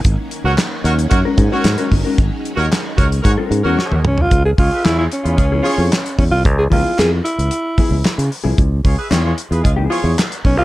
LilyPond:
<<
  \new Staff \with { instrumentName = "Horn section" } { \time 4/4 \key des \mixolydian \tempo 4 = 112 r8. <ges' bes' des''>16 r8 <ges' bes' des''>16 r16 <ges' bes' des''>16 r8 <ges' bes' des''>8. r8 | r8. <ges' bes' des''>16 r8 <ges' bes' des''>16 r16 <ges' bes' des''>16 r8 <ges' bes' des''>8. r8 | r8 <f' aes' des''>16 <aes' ces'' e''>16 <f' aes' des''>16 <f' aes' des''>16 r16 <f' aes' ces''>16 <aes f' aes'>16 r16 <f' aes' des''>8 r4 | r1 |
r8 <f' aes' des''>16 <aes' ces'' e''>16 <f' aes' des''>16 <f' aes' des''>16 r16 <f' aes' ces''>16 <aes f' aes'>16 r16 <f' aes' des''>8 r4 | }
  \new Staff \with { instrumentName = "Alto saxophone" } { \time 4/4 \key des \mixolydian r1 | r2. r8 des'16 f'16~ | f'16 aes'16 f'8 e'16 e'16 des'2 des'16 f'16~ | f'16 aes'16 f'8 aes'8 e'2 r8 |
r2. r8 des'16 f'16 | }
  \new Staff \with { instrumentName = "Clean electric guitar" } { \time 4/4 \key des \mixolydian r2 r16 <aes des' ges' bes'>16 r16 <aes des' ges' des''>16 r16 <aes des' ges' bes'>16 r16 <aes des' ges' bes'>16 | r2 r16 <aes des' ges' bes'>8 <aes des' ges' bes'>16 r4 | r4 <f ces' e' aes'>16 r4 <f ces' e' aes'>16 r16 <f ces' e' aes'>16 r4 | r8 <f ces' e' aes'>8 <f ces' e' bes'>16 r4 r16 <f ces' e' aes'>16 r4 <f ces' e' aes'>16 |
r4 <f ces' e' aes'>8 r8. <f ces' e' aes'>8 <f ces' e' aes'>16 r4 | }
  \new Staff \with { instrumentName = "String machine" } { \clef bass \time 4/4 \key des \mixolydian << { <ees ges des'>1~ | <ees ges des'>1 | r1 | r1 |
r1 | } \\ { bes1 | aes1 | r1 | r1 |
r1 | } >> }
  \new Staff \with { instrumentName = "Fingered electric bass" } { \clef bass \time 4/4 \key des \mixolydian aes,,16 r8 des,16 r8 ees,8 ges,16 r16 aes,16 r16 aes,16 r16 g,,16 r16 | aes,,16 r8 ees,16 r8 des,8 aes,16 r16 aes,16 fes,16 r16 ees,16 des,16 c,16 | des,8 des,16 r16 e,8 r16 e,16 des,8 r16 f,16 r8 e,16 c,16 | des,8 des,16 r16 f,8 r16 des,16 r8. des,16 r16 des16 r16 c,16 |
des,8 des,16 r16 e,8 r16 e,16 des,8 r16 e,16 r8 ces,16 c,16 | }
  \new DrumStaff \with { instrumentName = "Drums" } \drummode { \time 4/4 <hh bd>8 hh8 <hc hh sn>8 hh16 hh16 <hh bd>8 <hh bd>8 <hc hh sn>16 hh16 <hho bd>8 | <hh bd>8 hh8 <hc hh sn>8 <hh bd>16 hh16 <hh bd>8 hh8 sn16 tommh16 toml16 tomfh16 | <hh bd>8 <hho bd>8 <hc hh sn>8 hh16 hh16 <hh bd>8 hho8 <hc hh sn>16 hh16 <hho bd>8 | <hh bd>8 <hho bd>8 <hc hh sn>8 hh16 hh16 hh8 <hho bd>8 <hc hh sn>16 hh16 hho8 |
<hh bd>8 <hho bd>8 <hc hh sn>8 hh16 hh16 <hh bd>8 hho8 <hc hh sn>16 hh16 <hho bd>8 | }
>>